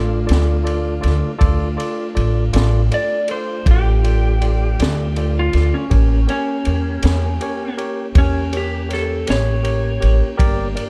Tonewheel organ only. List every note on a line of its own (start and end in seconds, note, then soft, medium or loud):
0.00 1.37 A3 medium
0.00 1.37 D4 medium
0.00 1.36 F4 medium
1.41 5.87 A3 medium
1.41 5.87 D4 medium
1.41 5.87 F4 medium
5.92 10.36 A#3 medium
5.92 10.36 C#4 medium
5.92 10.37 G4 medium
10.40 10.89 A#3 medium
10.40 10.89 D4 medium
10.40 10.89 G4 medium